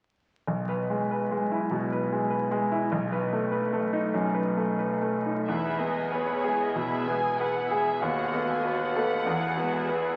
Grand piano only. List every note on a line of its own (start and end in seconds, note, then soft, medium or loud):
0.47 1.67 B1 soft
0.69 1.01 B4 soft
0.90 1.22 G#3 soft
1.11 1.42 B4 soft
1.31 1.63 G#3 soft
1.52 1.83 E4 soft
1.71 2.03 B2 soft
1.92 2.24 B4 soft
2.12 2.45 G#3 soft
2.30 2.64 B4 soft
2.51 2.84 G#3 soft
2.72 2.92 E4 soft
2.92 4.10 B1 soft
3.12 3.45 B4 soft
3.33 3.65 A3 soft
3.52 3.84 B4 soft
3.73 4.05 A3 soft
3.93 4.26 D#4 soft
4.14 4.48 F#2 soft
4.34 4.70 B4 soft
4.57 4.93 A3 soft
4.79 5.16 B4 soft
5.02 5.40 A3 soft
5.26 5.48 D#4 soft
5.48 6.73 E2 soft
5.79 6.31 B3 soft
6.12 6.64 B4 soft
6.44 6.96 G#4 soft
6.75 7.27 B2 soft
7.07 7.59 B3 soft
7.41 7.91 B4 soft
7.71 8.03 G#4 soft
8.02 9.23 D#2 soft
8.34 8.84 B3 soft
8.65 9.14 B4 soft
8.96 9.27 A4 soft
9.26 10.16 E2 soft
9.57 10.08 B3 soft
9.89 10.16 B4 soft